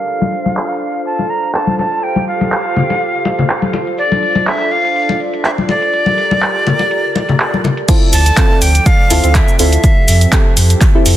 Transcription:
Already playing: D4 A4 F5
0.08 F4 C5 F5, closed hi-hat
0.21 high conga
0.32 closed hi-hat
0.46 closed hi-hat, high conga
0.57 clap, closed hi-hat
0.81 closed hi-hat
0.94 closed hi-hat
1.06 A5, closed hi-hat
1.19 muted conga
1.30 A#5
1.43 closed hi-hat
1.54 A5, clap, closed hi-hat
1.67 high conga
1.79 A5, muted conga
1.92 closed hi-hat
2.03 G4 F5 G5, closed hi-hat
2.16 high conga
2.28 F5, closed hi-hat
2.41 closed hi-hat, high conga
2.52 clap, closed hi-hat
2.76 closed hi-hat, muted conga, low conga
2.90 closed hi-hat, muted conga
3.01 closed hi-hat
3.25 closed hi-hat, muted conga
3.38 closed hi-hat, low conga
3.50 clap, closed hi-hat
3.62 high conga
3.73 muted conga
3.87 closed hi-hat
3.98 D4 D5, closed hi-hat
4.12 high conga
4.23 closed hi-hat
4.35 closed hi-hat, high conga
4.47 E5, clap, closed hi-hat
4.71 F5, closed hi-hat
4.85 closed hi-hat
4.96 closed hi-hat
5.09 muted conga
5.20 closed hi-hat
5.34 closed hi-hat
5.45 E5, clap, closed hi-hat
5.58 high conga
5.69 D5, muted conga
5.82 closed hi-hat
5.93 G4 A#4, closed hi-hat
6.06 high conga
6.18 closed hi-hat
6.31 closed hi-hat, high conga
6.42 clap, closed hi-hat
6.67 closed hi-hat, muted conga, low conga
6.79 closed hi-hat, muted conga
6.91 closed hi-hat
7.15 closed hi-hat, muted conga
7.29 closed hi-hat, low conga
7.40 clap, closed hi-hat
7.54 high conga
7.64 muted conga, low conga
7.77 closed hi-hat
7.88 F3 C4 E4 F4 A4 D5, kick, closed hi-hat, crash, shaker
8.13 D2 A5, open hi-hat, shaker
8.26 closed hi-hat, shaker
8.37 C4 E4 F4 A4, kick, clap, closed hi-hat, shaker
8.62 D2 G5, open hi-hat, shaker
8.75 closed hi-hat, shaker
8.86 F5, kick, closed hi-hat, shaker
9.10 D2 C4 E4 F4 A4, open hi-hat, shaker
9.24 D2 C4 E4 F4 A4, closed hi-hat, shaker
9.35 E5, kick, clap, closed hi-hat, shaker
9.48 shaker
9.59 D2 C4 E4 F4 A4 E5, open hi-hat, shaker
9.73 closed hi-hat, shaker
9.84 G4 A4, kick, closed hi-hat, shaker
10.08 F2, open hi-hat, shaker
10.21 closed hi-hat, shaker
10.32 C4 E4 G4 A4, kick, clap, closed hi-hat, shaker
10.57 F2, open hi-hat, shaker
10.70 closed hi-hat, shaker
10.81 kick, clap, closed hi-hat, shaker
10.95 C4 E4 G4 A4
11.06 F2, open hi-hat, shaker

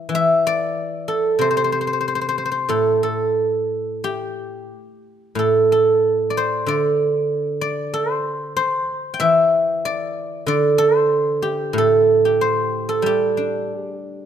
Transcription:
Already playing: E4 G4
0.09 E3
0.15 E5
0.47 D5
1.08 A4
1.39 C3 C5
1.51 C5
1.57 C5
1.64 C5
1.72 C5
1.81 C5
1.87 C5
1.93 C5
2.01 C5
2.08 C5
2.15 C5
2.21 C5
2.29 C5
2.38 C5
2.46 C5
2.52 C5
2.69 A2 A4
3.03 A4
4.04 G4
5.35 A2 A4
5.72 A4
6.30 D5
6.37 C5
6.66 D3 D5
7.61 D5
7.94 C5
8.57 C5
9.14 G5
9.20 E3 E5
9.85 D5
10.46 D3 D5
10.78 C5
11.42 G4
11.73 A2
11.78 A4
12.25 G4
12.41 C5
12.89 A4
13.02 G3 G4
13.37 D4
13.76 G#4
13.95 G4
14.16 G#4

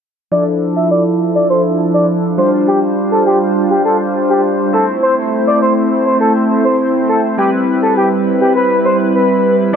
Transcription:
0.32 F3 D4 E4 A4 D5
0.76 E5
0.91 D5
1.35 D5
1.50 C5
1.94 D5
2.38 G3 D4 F4 C5
2.68 G4
3.11 A4
3.27 G4
3.70 G4
3.85 A4
4.30 G4
4.73 A3 C4 E4 A4 C5
5.03 C5
5.47 D5
5.62 C5
6.06 C5
6.21 A4
6.65 C5
7.09 A4
7.37 G3 C4 E4 G4 B4
7.82 A4
7.97 G4
8.41 G4
8.56 B4
8.85 C5
9.15 B4
9.73 F3

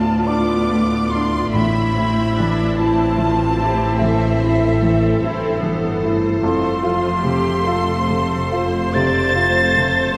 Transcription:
Already playing: D2 A2 B3 D4 F4 D5 A5
0.26 D4 D5 D6
0.71 A2
1.10 C6
1.14 D4
1.52 A1 A2 A3 E4 E5 B5
1.96 C4 E4
2.36 E3 D4
2.76 C4 E4 C5 A5
3.18 E3 F4
3.59 E4 G4
3.99 E3 A4 E5
4.42 E4
4.82 E3
5.20 G1 G2 C4 C5
5.24 E4
5.61 E3 B3
6.01 A3 E4
6.41 F1 F2 A3 A4 C6
6.83 F4
7.23 C3 G4
7.63 F4 A4 C5
8.08 C3 A4
8.52 F4 C5
8.93 C3 D5 A6
9.33 F4 C5
9.75 C3 A4

